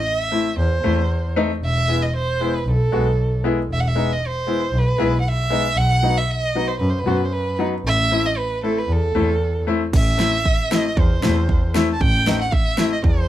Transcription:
0.06 D#5
0.17 E5
0.32 A3 C4 E4
0.57 E2 C5
0.83 E2 A3 C4 E4
1.36 A3 C4 D#4
1.62 E1 E5
1.88 G#3 B3 E4
2.02 D#5
2.17 C5
2.40 G#3 B3 E4
2.55 B4
2.66 B1
2.71 A4
2.92 B1 G#3 B3 F#4
3.44 G#3 B3 E4
3.70 E1 E5
3.80 F#5
3.88 E5
3.96 G#3 B3 D#4
4.13 D#5
4.27 C5
4.47 G#3 B3 E4
4.72 B1
4.78 B4
4.98 B1 G#3 B3 E4
5.21 F#5
5.28 E5
5.50 G#3 B3 D#4
5.76 B1 F#5
6.03 F#3 B3 D#4
6.17 E5
6.31 D#5
6.55 F#3 B3 D#4
6.68 C5
6.80 F#2 B4
6.90 C5
6.99 B4
7.05 F#2 F#3 B3 F#4 C5
7.17 B4
7.25 C5
7.33 B4
7.59 F#3 B3 D#4
7.84 A1 E5
8.11 A3 C4 E4
8.26 D#5
8.38 B4
8.63 A3 C4 E4 A4
8.78 B4
8.88 E2 A4
9.15 E2 A3 C4 E4
9.67 A3 C4 E4
9.93 A1 E5, kick, crash
10.18 A3 C4 E4, snare
10.46 kick
10.71 A3 C4 E4 D#5, snare
10.97 E2 C5, kick
11.22 E2 A3 C4 E4, snare
11.49 kick
11.74 A3 C4 E4, snare
11.93 A5
12.00 A1 G5, kick
12.26 A3 C4 D#4, snare
12.41 F#5
12.52 E5, kick
12.77 A3 C4 E4, snare
12.92 D#5
13.04 E2 C5, kick

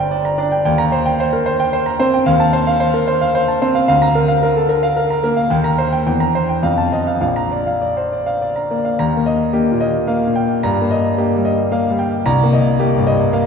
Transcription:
Already playing: G1 C5 D5 A#5
0.00 G5
0.11 D5
0.25 A#5
0.38 D4 D5
0.52 G5
0.65 D#2 G5
0.78 A#5
0.92 C5
1.06 G5
1.20 C5
1.33 A#4
1.46 C5
1.60 G5
1.73 C5
1.86 A#5
1.99 C4 C5
2.14 G5
2.26 D#2 F5
2.40 A5
2.53 C5
2.67 F5
2.80 C5
2.94 A#4
3.08 C5
3.21 F5
3.35 C5
3.48 A5
3.62 C4 C5
3.75 F5
3.88 D2 F5
4.02 A#5
4.15 A#4
4.28 F5
4.43 A#4
4.56 A4
4.69 A#4
4.83 F5
4.96 A#4
5.10 A#5
5.24 A#3 A#4
5.37 F5
5.50 D#2 G5
5.64 A#5
5.78 C5
5.93 G5
6.06 E2 G5
6.20 A#5
6.35 C5
6.49 G5
6.63 F2 F5
6.78 A5
6.92 D#5
7.07 F5
7.21 A#1 F5
7.36 A#5
7.51 D5
7.67 F5
7.81 D5
7.97 C5
8.12 D5
8.26 F5
8.41 D5
8.56 A#5
8.71 A#3 D5
8.85 F5
8.99 D#2 A#5
9.17 A#3
9.26 D#5
9.53 A#3 G4
9.72 A#2
9.80 D#5
10.07 A#3 F5
10.27 A#2
10.36 G5
10.63 G2 A#5
10.82 A#3
10.91 D#5
11.18 A#3 G4
11.36 G3
11.45 D#5
11.72 A#3 F5
11.90 G3
11.99 G5
12.26 C2 A#5
12.43 A#3
12.53 D#5
12.80 A#3 G4
12.98 G2
13.07 D#5
13.33 A#3 F5

